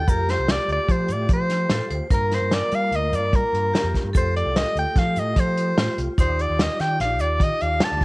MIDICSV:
0, 0, Header, 1, 6, 480
1, 0, Start_track
1, 0, Tempo, 406504
1, 98, Time_signature, 5, 2, 24, 8
1, 9502, End_track
2, 0, Start_track
2, 0, Title_t, "Soprano saxophone"
2, 0, Program_c, 0, 64
2, 0, Note_on_c, 0, 79, 76
2, 106, Note_on_c, 0, 70, 81
2, 124, Note_off_c, 0, 79, 0
2, 352, Note_on_c, 0, 72, 79
2, 370, Note_off_c, 0, 70, 0
2, 596, Note_on_c, 0, 74, 88
2, 614, Note_off_c, 0, 72, 0
2, 827, Note_off_c, 0, 74, 0
2, 850, Note_on_c, 0, 74, 94
2, 1077, Note_on_c, 0, 72, 80
2, 1094, Note_off_c, 0, 74, 0
2, 1326, Note_on_c, 0, 74, 84
2, 1344, Note_off_c, 0, 72, 0
2, 1551, Note_off_c, 0, 74, 0
2, 1571, Note_on_c, 0, 72, 81
2, 2226, Note_off_c, 0, 72, 0
2, 2523, Note_on_c, 0, 70, 83
2, 2765, Note_on_c, 0, 72, 76
2, 2783, Note_off_c, 0, 70, 0
2, 2994, Note_on_c, 0, 74, 86
2, 3012, Note_off_c, 0, 72, 0
2, 3247, Note_on_c, 0, 77, 94
2, 3264, Note_off_c, 0, 74, 0
2, 3492, Note_on_c, 0, 75, 83
2, 3510, Note_off_c, 0, 77, 0
2, 3717, Note_on_c, 0, 74, 83
2, 3734, Note_off_c, 0, 75, 0
2, 3958, Note_on_c, 0, 70, 79
2, 3976, Note_off_c, 0, 74, 0
2, 4667, Note_off_c, 0, 70, 0
2, 4924, Note_on_c, 0, 72, 78
2, 5134, Note_off_c, 0, 72, 0
2, 5149, Note_on_c, 0, 74, 79
2, 5388, Note_on_c, 0, 75, 88
2, 5406, Note_off_c, 0, 74, 0
2, 5622, Note_off_c, 0, 75, 0
2, 5649, Note_on_c, 0, 79, 91
2, 5882, Note_on_c, 0, 77, 86
2, 5900, Note_off_c, 0, 79, 0
2, 6130, Note_on_c, 0, 75, 80
2, 6148, Note_off_c, 0, 77, 0
2, 6371, Note_on_c, 0, 72, 84
2, 6389, Note_off_c, 0, 75, 0
2, 7074, Note_off_c, 0, 72, 0
2, 7320, Note_on_c, 0, 72, 82
2, 7568, Note_on_c, 0, 74, 82
2, 7586, Note_off_c, 0, 72, 0
2, 7818, Note_on_c, 0, 75, 83
2, 7836, Note_off_c, 0, 74, 0
2, 8035, Note_on_c, 0, 79, 92
2, 8053, Note_off_c, 0, 75, 0
2, 8267, Note_off_c, 0, 79, 0
2, 8273, Note_on_c, 0, 77, 86
2, 8509, Note_on_c, 0, 74, 89
2, 8527, Note_off_c, 0, 77, 0
2, 8768, Note_on_c, 0, 75, 83
2, 8786, Note_off_c, 0, 74, 0
2, 8996, Note_on_c, 0, 77, 94
2, 9014, Note_off_c, 0, 75, 0
2, 9256, Note_on_c, 0, 81, 98
2, 9274, Note_off_c, 0, 77, 0
2, 9502, Note_off_c, 0, 81, 0
2, 9502, End_track
3, 0, Start_track
3, 0, Title_t, "Vibraphone"
3, 0, Program_c, 1, 11
3, 106, Note_on_c, 1, 67, 94
3, 2015, Note_on_c, 1, 69, 76
3, 2078, Note_off_c, 1, 67, 0
3, 2250, Note_on_c, 1, 72, 89
3, 2263, Note_off_c, 1, 69, 0
3, 2492, Note_on_c, 1, 70, 92
3, 2500, Note_off_c, 1, 72, 0
3, 4411, Note_on_c, 1, 67, 82
3, 4471, Note_off_c, 1, 70, 0
3, 4880, Note_on_c, 1, 69, 90
3, 4908, Note_off_c, 1, 67, 0
3, 6823, Note_on_c, 1, 65, 76
3, 6866, Note_off_c, 1, 69, 0
3, 7266, Note_off_c, 1, 65, 0
3, 7297, Note_on_c, 1, 63, 87
3, 9225, Note_on_c, 1, 62, 74
3, 9276, Note_off_c, 1, 63, 0
3, 9502, Note_off_c, 1, 62, 0
3, 9502, End_track
4, 0, Start_track
4, 0, Title_t, "Tonewheel organ"
4, 0, Program_c, 2, 16
4, 100, Note_on_c, 2, 57, 55
4, 106, Note_on_c, 2, 65, 53
4, 111, Note_on_c, 2, 67, 60
4, 2450, Note_off_c, 2, 57, 0
4, 2453, Note_off_c, 2, 65, 0
4, 2456, Note_off_c, 2, 67, 0
4, 2483, Note_on_c, 2, 58, 59
4, 2491, Note_on_c, 2, 65, 53
4, 2500, Note_on_c, 2, 70, 61
4, 4842, Note_off_c, 2, 58, 0
4, 4846, Note_off_c, 2, 65, 0
4, 4850, Note_off_c, 2, 70, 0
4, 4882, Note_on_c, 2, 57, 53
4, 4890, Note_on_c, 2, 65, 54
4, 4895, Note_on_c, 2, 67, 65
4, 7242, Note_off_c, 2, 57, 0
4, 7247, Note_off_c, 2, 65, 0
4, 7249, Note_off_c, 2, 67, 0
4, 7300, Note_on_c, 2, 74, 56
4, 7314, Note_on_c, 2, 67, 65
4, 7315, Note_on_c, 2, 65, 54
4, 9502, Note_off_c, 2, 65, 0
4, 9502, Note_off_c, 2, 67, 0
4, 9502, Note_off_c, 2, 74, 0
4, 9502, End_track
5, 0, Start_track
5, 0, Title_t, "Picked electric bass"
5, 0, Program_c, 3, 34
5, 92, Note_on_c, 3, 41, 83
5, 408, Note_off_c, 3, 41, 0
5, 454, Note_on_c, 3, 36, 74
5, 664, Note_off_c, 3, 36, 0
5, 805, Note_on_c, 3, 38, 71
5, 915, Note_off_c, 3, 38, 0
5, 1047, Note_on_c, 3, 53, 84
5, 1283, Note_on_c, 3, 45, 73
5, 1300, Note_off_c, 3, 53, 0
5, 1498, Note_off_c, 3, 45, 0
5, 1527, Note_on_c, 3, 53, 93
5, 1949, Note_off_c, 3, 53, 0
5, 2007, Note_on_c, 3, 45, 78
5, 2116, Note_off_c, 3, 45, 0
5, 2249, Note_on_c, 3, 38, 74
5, 2357, Note_off_c, 3, 38, 0
5, 2490, Note_on_c, 3, 43, 93
5, 2807, Note_off_c, 3, 43, 0
5, 2853, Note_on_c, 3, 43, 71
5, 3063, Note_off_c, 3, 43, 0
5, 3218, Note_on_c, 3, 55, 80
5, 3426, Note_off_c, 3, 55, 0
5, 3443, Note_on_c, 3, 38, 82
5, 3690, Note_on_c, 3, 43, 92
5, 3707, Note_off_c, 3, 38, 0
5, 3901, Note_off_c, 3, 43, 0
5, 3934, Note_on_c, 3, 55, 82
5, 4039, Note_off_c, 3, 55, 0
5, 4169, Note_on_c, 3, 43, 80
5, 4381, Note_off_c, 3, 43, 0
5, 4530, Note_on_c, 3, 41, 85
5, 4637, Note_off_c, 3, 41, 0
5, 4766, Note_on_c, 3, 43, 78
5, 4875, Note_off_c, 3, 43, 0
5, 4900, Note_on_c, 3, 41, 84
5, 5212, Note_off_c, 3, 41, 0
5, 5257, Note_on_c, 3, 36, 71
5, 5466, Note_off_c, 3, 36, 0
5, 5613, Note_on_c, 3, 38, 70
5, 5719, Note_off_c, 3, 38, 0
5, 5857, Note_on_c, 3, 53, 85
5, 6098, Note_on_c, 3, 45, 81
5, 6115, Note_off_c, 3, 53, 0
5, 6306, Note_off_c, 3, 45, 0
5, 6335, Note_on_c, 3, 53, 105
5, 6754, Note_off_c, 3, 53, 0
5, 6818, Note_on_c, 3, 45, 73
5, 6922, Note_off_c, 3, 45, 0
5, 7063, Note_on_c, 3, 36, 75
5, 7165, Note_off_c, 3, 36, 0
5, 7301, Note_on_c, 3, 39, 98
5, 7613, Note_off_c, 3, 39, 0
5, 7673, Note_on_c, 3, 39, 71
5, 7875, Note_off_c, 3, 39, 0
5, 8033, Note_on_c, 3, 51, 70
5, 8235, Note_off_c, 3, 51, 0
5, 8267, Note_on_c, 3, 34, 78
5, 8508, Note_off_c, 3, 34, 0
5, 8508, Note_on_c, 3, 39, 95
5, 8713, Note_off_c, 3, 39, 0
5, 8739, Note_on_c, 3, 51, 97
5, 8843, Note_off_c, 3, 51, 0
5, 8997, Note_on_c, 3, 39, 74
5, 9198, Note_off_c, 3, 39, 0
5, 9347, Note_on_c, 3, 38, 98
5, 9448, Note_off_c, 3, 38, 0
5, 9502, End_track
6, 0, Start_track
6, 0, Title_t, "Drums"
6, 90, Note_on_c, 9, 36, 97
6, 91, Note_on_c, 9, 42, 73
6, 97, Note_on_c, 9, 82, 54
6, 208, Note_off_c, 9, 36, 0
6, 209, Note_off_c, 9, 42, 0
6, 215, Note_off_c, 9, 82, 0
6, 338, Note_on_c, 9, 38, 30
6, 338, Note_on_c, 9, 42, 47
6, 456, Note_off_c, 9, 38, 0
6, 456, Note_off_c, 9, 42, 0
6, 571, Note_on_c, 9, 38, 95
6, 571, Note_on_c, 9, 42, 70
6, 593, Note_on_c, 9, 82, 18
6, 689, Note_off_c, 9, 38, 0
6, 689, Note_off_c, 9, 42, 0
6, 711, Note_off_c, 9, 82, 0
6, 815, Note_on_c, 9, 42, 53
6, 933, Note_off_c, 9, 42, 0
6, 1046, Note_on_c, 9, 36, 87
6, 1050, Note_on_c, 9, 42, 72
6, 1164, Note_off_c, 9, 36, 0
6, 1168, Note_off_c, 9, 42, 0
6, 1279, Note_on_c, 9, 42, 58
6, 1302, Note_on_c, 9, 82, 45
6, 1397, Note_off_c, 9, 42, 0
6, 1421, Note_off_c, 9, 82, 0
6, 1521, Note_on_c, 9, 42, 74
6, 1524, Note_on_c, 9, 36, 101
6, 1639, Note_off_c, 9, 42, 0
6, 1642, Note_off_c, 9, 36, 0
6, 1766, Note_on_c, 9, 38, 31
6, 1766, Note_on_c, 9, 42, 60
6, 1884, Note_off_c, 9, 38, 0
6, 1884, Note_off_c, 9, 42, 0
6, 2001, Note_on_c, 9, 38, 100
6, 2001, Note_on_c, 9, 42, 84
6, 2119, Note_off_c, 9, 38, 0
6, 2119, Note_off_c, 9, 42, 0
6, 2248, Note_on_c, 9, 42, 53
6, 2366, Note_off_c, 9, 42, 0
6, 2485, Note_on_c, 9, 42, 77
6, 2486, Note_on_c, 9, 36, 99
6, 2489, Note_on_c, 9, 82, 55
6, 2604, Note_off_c, 9, 36, 0
6, 2604, Note_off_c, 9, 42, 0
6, 2607, Note_off_c, 9, 82, 0
6, 2734, Note_on_c, 9, 38, 30
6, 2734, Note_on_c, 9, 42, 55
6, 2852, Note_off_c, 9, 38, 0
6, 2852, Note_off_c, 9, 42, 0
6, 2969, Note_on_c, 9, 38, 106
6, 2969, Note_on_c, 9, 42, 73
6, 3088, Note_off_c, 9, 38, 0
6, 3088, Note_off_c, 9, 42, 0
6, 3208, Note_on_c, 9, 42, 55
6, 3214, Note_on_c, 9, 82, 18
6, 3326, Note_off_c, 9, 42, 0
6, 3332, Note_off_c, 9, 82, 0
6, 3453, Note_on_c, 9, 42, 70
6, 3571, Note_off_c, 9, 42, 0
6, 3697, Note_on_c, 9, 42, 58
6, 3705, Note_on_c, 9, 82, 43
6, 3815, Note_off_c, 9, 42, 0
6, 3823, Note_off_c, 9, 82, 0
6, 3933, Note_on_c, 9, 36, 97
6, 3937, Note_on_c, 9, 42, 64
6, 4052, Note_off_c, 9, 36, 0
6, 4055, Note_off_c, 9, 42, 0
6, 4187, Note_on_c, 9, 42, 57
6, 4305, Note_off_c, 9, 42, 0
6, 4425, Note_on_c, 9, 38, 101
6, 4425, Note_on_c, 9, 42, 79
6, 4543, Note_off_c, 9, 38, 0
6, 4543, Note_off_c, 9, 42, 0
6, 4657, Note_on_c, 9, 36, 55
6, 4665, Note_on_c, 9, 38, 30
6, 4665, Note_on_c, 9, 42, 54
6, 4776, Note_off_c, 9, 36, 0
6, 4783, Note_off_c, 9, 38, 0
6, 4783, Note_off_c, 9, 42, 0
6, 4898, Note_on_c, 9, 36, 98
6, 4900, Note_on_c, 9, 82, 66
6, 4906, Note_on_c, 9, 42, 72
6, 5016, Note_off_c, 9, 36, 0
6, 5018, Note_off_c, 9, 82, 0
6, 5024, Note_off_c, 9, 42, 0
6, 5153, Note_on_c, 9, 42, 53
6, 5271, Note_off_c, 9, 42, 0
6, 5386, Note_on_c, 9, 38, 106
6, 5386, Note_on_c, 9, 42, 76
6, 5504, Note_off_c, 9, 38, 0
6, 5504, Note_off_c, 9, 42, 0
6, 5623, Note_on_c, 9, 82, 18
6, 5630, Note_on_c, 9, 42, 52
6, 5741, Note_off_c, 9, 82, 0
6, 5748, Note_off_c, 9, 42, 0
6, 5853, Note_on_c, 9, 36, 99
6, 5856, Note_on_c, 9, 38, 30
6, 5856, Note_on_c, 9, 42, 69
6, 5971, Note_off_c, 9, 36, 0
6, 5974, Note_off_c, 9, 38, 0
6, 5974, Note_off_c, 9, 42, 0
6, 6094, Note_on_c, 9, 42, 61
6, 6094, Note_on_c, 9, 82, 46
6, 6212, Note_off_c, 9, 42, 0
6, 6212, Note_off_c, 9, 82, 0
6, 6332, Note_on_c, 9, 36, 92
6, 6333, Note_on_c, 9, 42, 84
6, 6450, Note_off_c, 9, 36, 0
6, 6451, Note_off_c, 9, 42, 0
6, 6582, Note_on_c, 9, 42, 62
6, 6701, Note_off_c, 9, 42, 0
6, 6822, Note_on_c, 9, 38, 111
6, 6822, Note_on_c, 9, 42, 83
6, 6940, Note_off_c, 9, 38, 0
6, 6940, Note_off_c, 9, 42, 0
6, 7063, Note_on_c, 9, 42, 62
6, 7181, Note_off_c, 9, 42, 0
6, 7297, Note_on_c, 9, 36, 110
6, 7303, Note_on_c, 9, 82, 52
6, 7304, Note_on_c, 9, 42, 82
6, 7416, Note_off_c, 9, 36, 0
6, 7422, Note_off_c, 9, 42, 0
6, 7422, Note_off_c, 9, 82, 0
6, 7548, Note_on_c, 9, 42, 56
6, 7666, Note_off_c, 9, 42, 0
6, 7786, Note_on_c, 9, 38, 102
6, 7786, Note_on_c, 9, 42, 73
6, 7904, Note_off_c, 9, 38, 0
6, 7904, Note_off_c, 9, 42, 0
6, 8025, Note_on_c, 9, 82, 15
6, 8026, Note_on_c, 9, 38, 29
6, 8026, Note_on_c, 9, 42, 55
6, 8143, Note_off_c, 9, 82, 0
6, 8144, Note_off_c, 9, 38, 0
6, 8144, Note_off_c, 9, 42, 0
6, 8266, Note_on_c, 9, 38, 30
6, 8266, Note_on_c, 9, 42, 70
6, 8384, Note_off_c, 9, 38, 0
6, 8384, Note_off_c, 9, 42, 0
6, 8495, Note_on_c, 9, 82, 46
6, 8501, Note_on_c, 9, 42, 57
6, 8613, Note_off_c, 9, 82, 0
6, 8619, Note_off_c, 9, 42, 0
6, 8739, Note_on_c, 9, 36, 95
6, 8745, Note_on_c, 9, 42, 74
6, 8857, Note_off_c, 9, 36, 0
6, 8863, Note_off_c, 9, 42, 0
6, 8982, Note_on_c, 9, 42, 62
6, 9100, Note_off_c, 9, 42, 0
6, 9214, Note_on_c, 9, 38, 111
6, 9214, Note_on_c, 9, 42, 87
6, 9332, Note_off_c, 9, 38, 0
6, 9332, Note_off_c, 9, 42, 0
6, 9457, Note_on_c, 9, 36, 64
6, 9460, Note_on_c, 9, 38, 29
6, 9460, Note_on_c, 9, 42, 52
6, 9502, Note_off_c, 9, 36, 0
6, 9502, Note_off_c, 9, 38, 0
6, 9502, Note_off_c, 9, 42, 0
6, 9502, End_track
0, 0, End_of_file